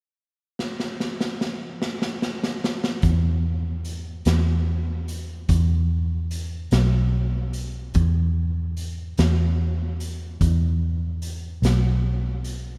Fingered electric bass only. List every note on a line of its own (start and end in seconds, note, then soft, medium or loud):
3.03 4.22 E2 medium
4.26 5.45 E2 medium
5.49 6.68 E2 medium
6.72 7.91 B1 medium
7.95 9.13 E2 medium
9.19 10.37 E2 medium
10.41 11.59 E2 medium
11.62 12.78 B1 medium